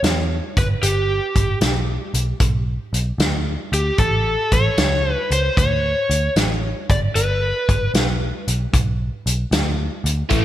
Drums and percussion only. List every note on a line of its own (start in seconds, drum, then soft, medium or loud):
0.04 snare medium
0.04 closed hi-hat medium
0.57 kick medium
0.57 closed hi-hat medium
0.83 closed hi-hat medium
1.36 kick medium
1.36 closed hi-hat medium
1.61 snare medium
1.61 closed hi-hat medium
2.14 closed hi-hat medium
2.40 kick loud
2.40 closed hi-hat medium
2.94 closed hi-hat medium
3.20 snare loud
3.20 closed hi-hat medium
3.73 closed hi-hat medium
3.98 kick medium
3.98 closed hi-hat medium
4.52 kick medium
4.52 closed hi-hat medium
4.78 snare loud
4.78 closed hi-hat medium
5.31 closed hi-hat medium
5.57 kick loud
5.57 closed hi-hat medium
6.11 closed hi-hat medium
6.36 snare medium
6.36 closed hi-hat medium
6.90 kick medium
6.90 closed hi-hat medium
7.16 closed hi-hat medium
7.69 kick medium
7.69 closed hi-hat medium
7.95 snare loud
7.95 closed hi-hat medium
8.48 closed hi-hat medium
8.74 kick loud
8.74 closed hi-hat medium
9.27 closed hi-hat medium
9.52 snare medium
9.52 closed hi-hat medium
10.06 closed hi-hat medium
10.30 kick loud
10.30 closed hi-hat medium